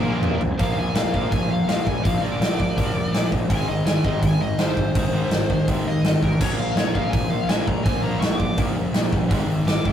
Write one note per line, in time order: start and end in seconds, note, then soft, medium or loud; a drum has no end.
0.00 0.16 A#1 medium
0.00 0.39 A#2 medium
0.00 0.40 F3 loud
0.00 0.40 F3 medium
0.00 0.38 A#3 medium
0.00 0.40 A#3 loud
0.00 0.41 A#3 loud
0.00 0.38 A#4 medium
0.04 0.41 A#2 medium
0.04 0.40 F3 medium
0.04 0.40 A#3 medium
0.21 0.34 A#1 medium
0.21 mid tom loud
0.39 0.52 A#1 medium
0.39 floor tom medium
0.59 0.71 A#1 medium
0.59 0.76 A#2 medium
0.59 0.76 F3 loud
0.59 0.76 A#3 medium
0.59 0.77 F5 loud
0.59 kick loud
0.59 open hi-hat medium
0.77 0.88 A#1 medium
0.77 0.93 A#2 medium
0.77 0.94 F3 medium
0.77 0.96 G#5 medium
0.94 1.06 A#1 loud
0.94 1.11 A#2 medium
0.94 1.11 F3 medium
0.94 1.12 F5 medium
0.94 snare loud
0.94 open hi-hat medium
1.13 1.25 A#1 medium
1.13 1.29 A#2 loud
1.13 1.30 F3 medium
1.13 1.31 A#3 loud
1.13 1.31 F5 medium
1.13 kick medium
1.30 1.43 A#1 medium
1.30 1.47 A#2 medium
1.30 1.48 F3 medium
1.30 1.49 G#5 medium
1.30 kick loud
1.30 open hi-hat medium
1.48 1.60 A#1 medium
1.48 1.65 A#2 medium
1.48 1.66 F3 medium
1.48 1.68 F5 medium
1.66 1.79 A#1 medium
1.66 1.83 A#2 medium
1.66 1.84 F3 medium
1.66 1.85 A#3 loud
1.66 1.87 F5 medium
1.66 snare loud
1.66 open hi-hat medium
1.84 1.98 A#1 medium
1.84 2.02 A#2 medium
1.84 2.02 F3 medium
1.84 2.04 G#5 medium
1.84 kick medium
2.03 2.16 A#1 medium
2.03 2.20 A#2 medium
2.03 2.20 F3 medium
2.03 3.49 A#3 loud
2.03 2.22 F5 medium
2.03 kick loud
2.03 open hi-hat medium
2.21 2.35 A#1 medium
2.21 2.39 A#2 medium
2.21 2.39 F3 medium
2.21 2.39 A#3 loud
2.21 3.28 D5 loud
2.40 2.63 A#1 medium
2.40 2.57 A#2 medium
2.40 2.57 F3 medium
2.40 snare loud
2.40 open hi-hat medium
2.59 2.75 A#2 medium
2.59 2.75 F3 medium
2.59 kick medium
2.77 2.89 A#1 loud
2.77 2.94 A#2 loud
2.77 2.94 F3 loud
2.77 2.95 A#3 loud
2.77 kick loud
2.77 open hi-hat medium
2.95 3.06 F1 medium
2.95 3.12 A#2 medium
2.95 3.12 F3 medium
3.13 3.25 A#1 medium
3.13 3.30 A#2 medium
3.13 3.31 F3 medium
3.13 snare loud
3.13 open hi-hat medium
3.32 3.43 A#1 medium
3.32 3.48 A#2 medium
3.32 3.48 F3 medium
3.32 kick medium
3.50 3.61 G#1 medium
3.50 3.67 G#2 medium
3.50 3.67 D#3 loud
3.50 3.67 G#3 loud
3.50 3.68 G#5 loud
3.50 kick loud
3.50 open hi-hat medium
3.68 3.79 G#1 medium
3.68 3.85 G#2 medium
3.68 3.85 D#3 medium
3.68 3.85 D#5 medium
3.85 3.97 G#1 medium
3.85 4.03 G#2 medium
3.85 4.03 D#3 medium
3.85 4.03 G#5 medium
3.85 snare loud
3.85 open hi-hat medium
4.04 4.16 G#1 medium
4.04 4.21 G#2 medium
4.04 4.21 D#3 loud
4.04 4.22 G#3 loud
4.04 4.22 D#5 loud
4.04 kick medium
4.22 4.34 G#1 medium
4.22 4.39 G#2 medium
4.22 4.39 D#3 medium
4.22 4.40 G#5 loud
4.22 kick loud
4.22 open hi-hat medium
4.40 4.52 G#1 medium
4.40 4.57 G#2 medium
4.40 4.57 D#3 medium
4.40 4.58 D#5 medium
4.58 4.70 G#1 medium
4.58 4.76 G#2 medium
4.58 4.76 D#3 medium
4.58 4.76 G#3 loud
4.58 5.65 C5 loud
4.58 snare loud
4.58 open hi-hat medium
4.77 4.89 G#1 medium
4.77 4.93 G#2 medium
4.77 4.94 D#3 medium
4.77 kick medium
4.95 5.07 G#1 medium
4.95 5.12 G#2 medium
4.95 5.12 D#3 medium
4.95 6.41 G#3 loud
4.95 kick loud
4.95 open hi-hat medium
5.11 5.23 G#1 medium
5.11 5.31 G#2 medium
5.11 5.31 D#3 medium
5.16 5.32 G#3 medium
5.30 5.54 G#1 medium
5.30 5.48 G#2 medium
5.30 5.49 D#3 medium
5.30 snare loud
5.30 open hi-hat medium
5.50 5.66 G#2 medium
5.50 5.67 D#3 medium
5.50 kick medium
5.67 5.79 G#1 medium
5.67 5.85 G#2 loud
5.67 5.85 D#3 medium
5.67 5.86 G#3 loud
5.67 kick loud
5.67 open hi-hat medium
5.84 5.96 D#2 medium
5.84 6.02 G#2 medium
5.84 6.02 D#3 medium
5.84 6.22 D#5 loud
6.03 6.15 G#1 medium
6.03 6.20 G#2 medium
6.03 6.21 D#3 medium
6.03 snare loud
6.03 open hi-hat medium
6.22 6.34 A1 medium
6.22 6.39 G#2 medium
6.22 6.39 D#3 medium
6.22 6.40 A#4 loud
6.22 kick medium
6.40 6.52 A#1 medium
6.40 6.58 A#2 loud
6.40 6.58 F3 loud
6.40 6.58 A#3 medium
6.40 6.58 C#5 medium
6.40 kick loud
6.40 crash loud
6.58 6.70 A#1 medium
6.58 6.75 A#2 medium
6.58 6.76 F3 medium
6.58 6.77 F5 loud
6.76 6.88 A#1 loud
6.76 6.93 A#2 medium
6.76 6.93 F3 medium
6.76 6.94 C#5 medium
6.76 snare loud
6.76 open hi-hat medium
6.94 7.06 A#1 medium
6.94 7.10 A#2 medium
6.94 7.11 F3 loud
6.94 7.12 A#3 loud
6.94 7.12 F5 medium
6.94 kick medium
7.10 7.24 A#1 medium
7.10 7.28 A#2 medium
7.10 7.29 F3 medium
7.10 7.29 G#5 medium
7.10 kick loud
7.10 open hi-hat medium
7.30 7.42 A#1 medium
7.30 7.46 A#2 medium
7.30 7.47 F3 medium
7.30 7.48 F5 medium
7.47 7.60 A#1 medium
7.47 7.65 A#2 medium
7.47 7.66 F3 medium
7.47 7.66 A#3 medium
7.47 7.66 G#5 medium
7.47 snare loud
7.47 open hi-hat medium
7.51 7.67 A#2 medium
7.51 7.68 A#3 loud
7.66 7.78 A#1 medium
7.66 7.83 A#2 medium
7.66 7.83 F3 medium
7.66 7.84 A#5 loud
7.66 kick medium
7.84 7.97 A#1 medium
7.84 8.01 A#2 medium
7.84 8.01 F3 medium
7.84 9.31 A#3 loud
7.84 8.02 G#5 loud
7.84 kick loud
7.84 open hi-hat medium
8.02 8.15 A#1 medium
8.02 8.20 A#2 loud
8.02 8.20 F3 medium
8.02 8.21 A#3 loud
8.02 8.20 A#5 loud
8.20 8.44 A#1 loud
8.20 8.38 A#2 medium
8.20 8.38 F3 medium
8.20 8.38 C#6 medium
8.20 snare loud
8.20 open hi-hat medium
8.38 8.56 A#2 medium
8.38 8.56 F3 medium
8.38 8.57 D6 loud
8.38 kick medium
8.57 8.69 A#1 loud
8.57 8.74 A#2 loud
8.57 8.75 F3 loud
8.57 8.75 A#3 loud
8.57 kick loud
8.57 open hi-hat medium
8.75 8.87 F1 medium
8.75 8.92 A#2 medium
8.75 8.92 F3 medium
8.93 9.05 A#1 medium
8.93 9.10 A#2 medium
8.93 9.10 F3 medium
8.93 snare loud
8.93 open hi-hat medium
9.11 9.24 G1 medium
9.11 9.28 A#2 medium
9.11 9.28 F3 medium
9.11 kick medium
9.29 9.42 G#1 loud
9.29 9.47 G#2 medium
9.29 9.47 D#3 loud
9.29 9.47 G#3 loud
9.29 kick loud
9.29 open hi-hat medium
9.47 9.59 G#1 medium
9.47 9.64 G#2 medium
9.47 9.63 D#3 medium
9.65 9.78 G#1 medium
9.65 9.82 G#2 medium
9.65 9.82 D#3 medium
9.65 9.85 D6 medium
9.65 snare loud
9.65 open hi-hat medium
9.83 9.93 G#1 medium
9.83 9.93 G#2 medium
9.83 9.93 D#3 loud
9.83 9.93 G#3 loud
9.83 kick medium